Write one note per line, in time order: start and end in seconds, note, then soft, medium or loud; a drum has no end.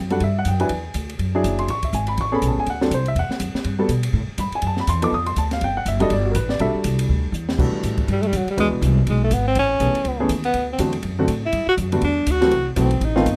0.00 0.20 F#2 loud
0.10 0.19 G3 medium
0.10 0.19 D4 medium
0.10 0.20 F#4 medium
0.10 0.20 A4 medium
0.10 0.21 F#5 medium
0.10 ride soft
0.20 0.44 G2 medium
0.20 0.36 E5 medium
0.20 kick soft
0.20 ride medium
0.39 0.47 F#5 medium
0.45 0.69 F#2 medium
0.45 0.61 G5 medium
0.45 kick soft
0.45 hi-hat pedal medium
0.45 ride medium
0.60 0.69 F#3 medium
0.60 0.69 D4 medium
0.60 0.69 E4 medium
0.60 0.69 B4 medium
0.60 0.92 G#5 medium
0.60 ride medium
0.69 0.94 E2 medium
0.69 kick soft
0.69 ride medium
0.94 1.18 D2 medium
0.94 kick soft
0.94 hi-hat pedal medium
0.94 ride medium
1.09 ride medium
1.19 1.43 F#2 medium
1.19 kick soft
1.19 ride medium
1.35 1.67 F#3 medium
1.35 1.67 D4 medium
1.35 1.67 E4 medium
1.35 1.67 G#4 medium
1.44 1.67 F#1 medium
1.44 kick soft
1.44 hi-hat pedal medium
1.44 ride medium
1.59 1.68 C6 medium
1.59 ride medium
1.68 1.92 A1 medium
1.68 1.83 C#6 loud
1.68 kick soft
1.68 ride medium
1.83 1.93 E5 medium
1.83 kick soft
1.83 ride medium
1.92 2.16 G#1 medium
1.92 2.08 G#5 medium
1.92 kick soft
1.92 hi-hat pedal medium
2.07 2.17 B5 loud
2.07 ride medium
2.17 2.41 A1 medium
2.17 2.33 C#6 loud
2.17 kick soft
2.17 ride medium
2.32 2.64 B3 medium
2.32 2.65 C#4 medium
2.32 2.64 G#4 medium
2.32 2.65 A4 medium
2.32 2.43 B5 loud
2.42 2.49 B1 loud
2.42 kick soft
2.42 hi-hat pedal medium
2.42 ride medium
2.47 2.57 A1 medium
2.47 2.59 A5 medium
2.57 2.65 G#1 medium
2.57 2.68 G#5 medium
2.66 2.90 D2 medium
2.66 2.82 F#5 medium
2.66 kick soft
2.66 ride medium
2.81 2.90 F#3 medium
2.81 2.90 C4 medium
2.81 2.90 D4 medium
2.81 2.90 A4 medium
2.81 snare medium
2.91 3.15 C2 medium
2.91 3.07 C5 medium
2.91 kick soft
2.91 hi-hat pedal medium
2.91 ride medium
3.06 3.17 E5 medium
3.06 ride medium
3.15 3.28 E2 medium
3.15 3.87 F#5 medium
3.15 kick soft
3.15 ride medium
3.29 muted upright bass stroke soft
3.29 snare medium
3.40 3.53 F#2 medium
3.40 kick soft
3.40 hi-hat pedal medium
3.40 ride medium
3.54 muted upright bass stroke soft
3.54 snare medium
3.64 3.88 G2 medium
3.64 kick soft
3.64 ride medium
3.79 3.88 G3 medium
3.79 3.88 B3 medium
3.79 3.88 F#4 medium
3.79 3.88 A4 medium
3.89 4.13 B2 loud
3.89 kick soft
3.89 hi-hat pedal medium
3.89 ride medium
4.03 ride medium
4.13 4.27 A2 loud
4.13 kick soft
4.27 muted upright bass stroke soft
4.38 4.51 G2 medium
4.38 4.53 B5 medium
4.38 kick soft
4.38 hi-hat pedal medium
4.38 ride medium
4.51 4.64 G#5 medium
4.51 muted upright bass stroke soft
4.51 ride medium
4.62 4.86 F#2 medium
4.62 kick soft
4.62 ride medium
4.67 4.79 A5 medium
4.77 4.88 B5 medium
4.77 snare soft
4.87 5.11 E2 medium
4.87 5.02 C6 loud
4.87 kick soft
4.87 hi-hat pedal medium
4.87 ride medium
5.02 5.11 F3 medium
5.02 5.11 B3 medium
5.02 5.11 D#4 medium
5.02 5.11 A4 medium
5.02 5.13 D6 loud
5.02 ride medium
5.12 5.36 F2 medium
5.12 5.27 D#6 loud
5.12 kick soft
5.26 5.36 C6 loud
5.26 ride medium
5.36 5.60 D2 medium
5.36 5.51 A5 loud
5.36 kick soft
5.36 hi-hat pedal soft
5.36 ride medium
5.51 5.62 F5 medium
5.51 snare soft
5.51 ride medium
5.61 5.85 G1 medium
5.61 5.77 G5 loud
5.61 kick soft
5.61 ride medium
5.77 5.86 F#5 medium
5.85 6.09 F#1 loud
5.85 6.01 E5 medium
5.85 kick soft
5.85 hi-hat pedal medium
5.85 ride medium
6.00 6.09 G3 medium
6.00 6.09 D4 medium
6.00 6.09 F#4 medium
6.00 6.09 A4 medium
6.00 6.11 D#5 loud
6.00 ride medium
6.10 6.34 G1 medium
6.10 6.26 D5 medium
6.10 kick soft
6.10 ride medium
6.25 6.35 F#4 medium
6.31 6.33 A#4 medium
6.35 6.59 A1 medium
6.35 6.49 B4 medium
6.35 kick soft
6.35 hi-hat pedal medium
6.35 ride medium
6.49 6.60 D5 medium
6.49 snare medium
6.59 6.73 B1 medium
6.59 7.28 G3 medium
6.59 7.28 D4 medium
6.59 7.28 F#4 medium
6.59 7.28 A4 medium
6.59 6.70 E5 loud
6.59 kick soft
6.59 ride medium
6.74 muted upright bass stroke soft
6.84 7.08 C2 loud
6.84 kick soft
6.84 hi-hat pedal medium
6.84 ride medium
6.99 ride medium
7.09 7.32 D2 medium
7.09 kick soft
7.32 7.57 E2 loud
7.32 hi-hat pedal medium
7.49 snare medium
7.58 7.71 B2 medium
7.58 8.26 E3 medium
7.58 8.26 G3 medium
7.58 8.26 A3 medium
7.58 8.26 D4 medium
7.58 8.26 F#4 medium
7.58 kick medium
7.58 crash medium
7.71 muted upright bass stroke soft
7.83 8.07 A2 loud
7.83 kick soft
7.83 hi-hat pedal medium
7.83 ride medium
7.97 kick medium
7.97 ride soft
8.08 8.31 G2 medium
8.08 kick soft
8.08 ride medium
8.12 8.23 G3 medium
8.22 8.28 A3 loud
8.22 ride soft
8.27 8.38 G3 medium
8.32 8.45 F#2 loud
8.32 kick soft
8.32 hi-hat pedal medium
8.32 ride medium
8.37 8.49 F#3 medium
8.46 muted upright bass stroke soft
8.46 ride soft
8.50 8.58 G3 medium
8.57 8.65 E2 medium
8.57 9.25 E3 medium
8.57 9.25 G#3 medium
8.57 8.68 G#3 loud
8.57 9.25 B3 medium
8.57 9.25 D4 medium
8.57 9.25 F#4 medium
8.57 kick soft
8.57 ride medium
8.65 8.72 D2 medium
8.73 8.81 B1 medium
8.81 9.05 C2 loud
8.81 kick soft
8.81 hi-hat pedal medium
8.81 ride medium
9.06 9.30 B1 loud
9.06 9.21 G#3 medium
9.06 kick soft
9.06 ride medium
9.24 9.35 A3 medium
9.31 9.55 G#1 loud
9.31 9.46 B3 medium
9.31 kick soft
9.31 hi-hat pedal medium
9.31 ride medium
9.47 9.56 C4 loud
9.55 9.79 A1 medium
9.55 10.27 C#4 loud
9.55 kick soft
9.55 ride medium
9.80 9.93 B1 medium
9.80 9.93 E3 medium
9.80 9.93 A3 medium
9.80 9.93 B3 medium
9.80 9.94 C#4 medium
9.80 9.93 G#4 medium
9.80 kick soft
9.80 hi-hat pedal medium
9.80 ride medium
9.95 ride medium
10.04 10.28 C#2 medium
10.04 kick soft
10.04 ride medium
10.20 10.29 E3 medium
10.20 10.29 A3 medium
10.20 10.29 B3 medium
10.20 10.29 C#4 medium
10.20 10.29 G#4 medium
10.29 10.53 D#2 medium
10.29 kick soft
10.29 hi-hat pedal medium
10.29 ride medium
10.44 10.67 B3 loud
10.44 ride medium
10.54 10.78 D2 medium
10.54 kick soft
10.54 ride medium
10.73 10.80 C4 medium
10.79 11.02 E2 medium
10.79 10.92 D3 medium
10.79 10.92 F#3 medium
10.79 10.92 A3 medium
10.79 10.92 C4 medium
10.79 10.92 F#4 medium
10.79 kick soft
10.79 hi-hat pedal medium
10.79 ride medium
10.93 ride medium
11.03 11.27 F#2 loud
11.03 kick soft
11.03 ride medium
11.19 11.27 D3 medium
11.19 11.28 F#3 medium
11.19 11.28 A3 medium
11.19 11.28 C4 medium
11.19 11.28 F#4 medium
11.28 11.52 A2 medium
11.28 kick soft
11.28 hi-hat pedal medium
11.28 ride medium
11.45 11.67 E4 loud
11.52 11.66 G2 medium
11.52 kick soft
11.52 ride medium
11.67 11.74 F#4 loud
11.67 muted upright bass stroke soft
11.77 12.01 F#2 loud
11.77 kick soft
11.77 hi-hat pedal medium
11.77 ride medium
11.92 12.01 D3 medium
11.92 12.01 G3 medium
11.92 12.01 A3 medium
11.92 12.01 B3 medium
11.92 12.02 F#4 medium
11.92 ride medium
12.01 12.26 E2 medium
12.01 12.32 D4 loud
12.01 kick soft
12.01 ride medium
12.26 12.51 D2 medium
12.26 kick soft
12.26 hi-hat pedal medium
12.26 ride medium
12.31 12.68 F#4 loud
12.41 12.50 E3 medium
12.41 12.50 F#3 medium
12.41 12.50 A3 medium
12.41 12.51 C4 medium
12.41 12.51 F#4 medium
12.41 snare medium
12.41 ride soft
12.51 12.75 C2 medium
12.51 kick soft
12.51 ride medium
12.76 13.00 B1 loud
12.76 12.89 E3 medium
12.76 12.89 F#3 medium
12.76 12.89 A3 medium
12.76 12.89 C4 medium
12.76 12.89 F#4 medium
12.76 kick soft
12.76 hi-hat pedal medium
12.76 ride medium
12.81 13.06 C4 medium
12.91 ride medium
13.01 13.25 A1 loud
13.01 kick soft
13.01 ride medium
13.05 13.36 D#4 loud
13.16 13.24 D#3 medium
13.16 13.24 A3 medium
13.16 13.25 B3 medium
13.16 13.25 C4 medium
13.16 13.25 F4 loud
13.16 snare soft
13.26 13.36 G1 loud
13.26 kick soft
13.26 hi-hat pedal medium
13.26 ride medium